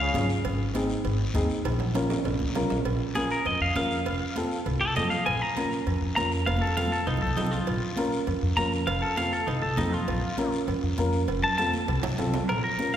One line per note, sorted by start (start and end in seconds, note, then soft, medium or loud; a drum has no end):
0.00 0.28 C#3 medium
0.00 0.28 F5 medium
0.14 0.26 G#1 loud
0.14 0.36 C#4 medium
0.14 0.36 F4 medium
0.14 0.36 G#4 medium
0.14 cowbell medium
0.14 high conga medium
0.14 low conga medium
0.14 low timbale medium
0.14 short guiro medium
0.30 short guiro medium
0.44 0.93 G#1 medium
0.44 cowbell loud
0.44 high conga soft
0.44 long guiro medium
0.74 0.95 C4 medium
0.74 0.96 D#4 medium
0.74 0.96 G#4 medium
0.74 cowbell medium
0.74 high conga medium
0.74 short guiro medium
0.90 short guiro medium
1.04 1.29 G#1 loud
1.04 cowbell medium
1.04 high conga soft
1.04 long guiro medium
1.34 1.47 D#2 loud
1.34 1.55 C4 medium
1.34 1.56 D#4 medium
1.34 1.56 G#4 loud
1.34 cowbell medium
1.34 high conga medium
1.34 short guiro medium
1.50 short guiro medium
1.64 2.13 A#1 loud
1.64 cowbell loud
1.64 high conga soft
1.64 high timbale medium
1.64 long guiro medium
1.79 low conga medium
1.79 high timbale medium
1.94 2.16 C#4 medium
1.94 2.16 F4 medium
1.94 2.16 A#4 medium
1.94 cowbell medium
1.94 high conga medium
1.94 high timbale loud
1.94 short guiro medium
2.10 low timbale medium
2.10 short guiro medium
2.25 2.37 A#1 loud
2.25 cowbell medium
2.25 high conga soft
2.25 low timbale medium
2.25 long guiro medium
2.40 2.53 C#2 medium
2.40 high conga medium
2.55 2.69 C2 medium
2.55 2.76 C#4 medium
2.55 2.76 F4 medium
2.55 2.77 A#4 medium
2.55 cowbell medium
2.55 low conga loud
2.55 low timbale medium
2.55 short guiro medium
2.70 2.84 A#1 medium
2.70 low conga medium
2.70 low timbale medium
2.70 short guiro medium
2.85 2.97 A#1 medium
2.85 cowbell loud
2.85 high conga soft
2.85 long guiro medium
3.15 3.36 C#4 medium
3.15 3.37 F4 medium
3.15 3.30 G#4 medium
3.15 3.37 A#4 medium
3.15 cowbell medium
3.15 high conga medium
3.15 short guiro medium
3.31 3.46 A#4 medium
3.31 short guiro medium
3.45 3.57 F2 loud
3.45 3.61 D#5 medium
3.45 cowbell medium
3.45 high conga soft
3.45 long guiro medium
3.60 3.73 F2 medium
3.60 3.75 F5 medium
3.75 4.00 F2 medium
3.75 3.97 C#4 medium
3.75 3.97 F4 medium
3.75 3.97 A#4 medium
3.75 4.64 F5 loud
3.75 cowbell medium
3.75 high conga medium
3.75 low timbale medium
3.75 short guiro medium
3.91 short guiro medium
4.06 4.18 F1 medium
4.06 cowbell loud
4.06 high conga soft
4.06 long guiro medium
4.36 4.57 C4 medium
4.36 4.57 F4 medium
4.36 4.57 A4 medium
4.36 cowbell medium
4.36 high conga medium
4.36 short guiro medium
4.51 short guiro medium
4.66 4.78 C2 loud
4.66 cowbell medium
4.66 high conga soft
4.66 long guiro medium
4.81 4.93 C2 medium
4.81 4.95 A4 medium
4.96 5.20 F2 medium
4.96 5.17 C4 medium
4.96 5.17 F4 medium
4.96 5.17 A4 medium
4.96 5.10 D#5 medium
4.96 cowbell medium
4.96 high conga medium
4.96 low conga medium
4.96 low timbale medium
4.96 short guiro medium
5.10 5.25 F5 medium
5.10 short guiro medium
5.26 5.38 A#1 medium
5.26 5.42 G#5 loud
5.26 cowbell medium
5.26 high conga soft
5.26 long guiro medium
5.42 6.00 A#5 medium
5.56 5.77 C#4 medium
5.56 5.78 F4 medium
5.56 5.78 A#4 medium
5.56 cowbell medium
5.56 high conga medium
5.56 short guiro medium
5.72 short guiro medium
5.86 5.98 F2 loud
5.86 cowbell medium
5.86 high conga soft
5.86 long guiro medium
6.02 6.14 F2 medium
6.16 6.41 F2 medium
6.16 6.38 C#4 medium
6.16 6.38 F4 medium
6.16 6.38 A#4 medium
6.16 6.31 A#5 loud
6.16 cowbell medium
6.16 high conga medium
6.16 short guiro medium
6.32 short guiro medium
6.46 6.59 F1 medium
6.46 6.61 F5 medium
6.46 cowbell loud
6.46 high conga medium
6.46 long guiro medium
6.57 high conga medium
6.62 6.76 A4 medium
6.67 high conga medium
6.77 6.98 C4 medium
6.77 6.98 F4 medium
6.77 6.98 A4 medium
6.77 6.91 F5 medium
6.77 cowbell medium
6.77 low conga medium
6.77 short guiro medium
6.88 high conga medium
6.92 7.07 A4 medium
6.92 short guiro medium
7.07 7.19 C2 loud
7.07 7.21 D#4 medium
7.07 cowbell medium
7.07 long guiro medium
7.17 low conga medium
7.22 7.34 C2 medium
7.22 7.36 A4 medium
7.27 low conga medium
7.37 7.61 C2 medium
7.37 7.58 C4 medium
7.37 7.51 D#4 loud
7.37 7.58 F4 medium
7.37 7.58 A4 medium
7.37 cowbell medium
7.37 low conga medium
7.37 low timbale medium
7.37 short guiro medium
7.47 low conga medium
7.51 8.10 F4 loud
7.51 short guiro medium
7.56 low conga medium
7.66 7.79 A#1 medium
7.66 cowbell loud
7.66 high conga soft
7.66 long guiro medium
7.97 8.18 C#4 medium
7.97 8.18 F4 medium
7.97 8.18 A#4 medium
7.97 cowbell medium
7.97 high conga medium
7.97 short guiro medium
8.12 short guiro medium
8.27 8.39 F2 loud
8.27 cowbell medium
8.27 high conga soft
8.27 long guiro medium
8.42 8.54 F2 medium
8.57 8.81 F2 loud
8.57 8.78 C#4 medium
8.57 8.78 F4 medium
8.57 8.79 A#4 medium
8.57 8.72 A#5 medium
8.57 cowbell medium
8.57 high conga medium
8.57 short guiro medium
8.72 short guiro medium
8.87 8.99 F1 medium
8.87 9.02 F5 medium
8.87 cowbell loud
8.87 high conga soft
8.87 long guiro medium
9.02 9.17 A4 medium
9.17 9.38 C4 medium
9.17 9.38 F4 medium
9.17 9.39 A4 medium
9.17 9.32 F5 loud
9.17 cowbell medium
9.17 high conga medium
9.17 short guiro medium
9.33 9.47 A4 medium
9.33 short guiro medium
9.47 9.59 C2 loud
9.47 9.62 D#4 medium
9.47 cowbell medium
9.47 high conga soft
9.47 long guiro medium
9.62 9.75 C2 loud
9.62 9.77 A4 loud
9.77 10.02 F2 loud
9.77 9.99 C4 medium
9.77 9.93 D#4 loud
9.77 9.99 F4 medium
9.77 9.99 A4 medium
9.77 cowbell medium
9.77 high conga medium
9.77 low conga medium
9.77 low timbale medium
9.77 short guiro medium
9.93 10.51 F4 loud
9.93 short guiro medium
10.08 10.20 A#1 loud
10.08 cowbell loud
10.08 high conga soft
10.08 long guiro medium
10.37 10.59 C#4 medium
10.37 10.59 F4 medium
10.37 10.59 A#4 medium
10.37 cowbell medium
10.37 high conga medium
10.37 short guiro medium
10.52 short guiro medium
10.67 10.80 F2 loud
10.67 cowbell medium
10.67 high conga soft
10.67 long guiro medium
10.83 10.95 F2 loud
10.98 11.22 F2 medium
10.98 11.19 C#4 medium
10.98 11.19 F4 medium
10.98 11.20 A#4 loud
10.98 cowbell medium
10.98 high conga medium
10.98 short guiro medium
11.13 short guiro medium
11.28 11.40 F1 medium
11.28 cowbell loud
11.28 high conga soft
11.28 long guiro medium
11.43 11.57 A5 loud
11.43 low conga medium
11.58 11.79 C4 medium
11.58 11.79 F4 medium
11.58 11.80 A4 medium
11.58 11.73 A5 loud
11.58 cowbell medium
11.58 high conga medium
11.58 short guiro medium
11.73 high conga medium
11.73 short guiro medium
11.88 12.00 C2 loud
11.88 cowbell loud
11.88 long guiro medium
12.03 12.15 C2 medium
12.03 low conga loud
12.03 high timbale loud
12.18 12.43 C2 loud
12.18 12.39 C4 medium
12.18 12.40 F4 medium
12.18 12.40 A4 medium
12.18 cowbell medium
12.18 low conga medium
12.18 low timbale medium
12.18 short guiro medium
12.34 low conga loud
12.34 low timbale medium
12.34 short guiro medium
12.48 12.61 A#1 medium
12.48 12.63 A#4 medium
12.48 cowbell loud
12.48 high conga soft
12.48 long guiro medium
12.64 12.92 A#4 medium
12.79 12.97 C#4 medium
12.79 12.97 F4 medium
12.79 12.97 A#4 medium
12.79 high conga medium
12.79 short guiro medium
12.94 short guiro medium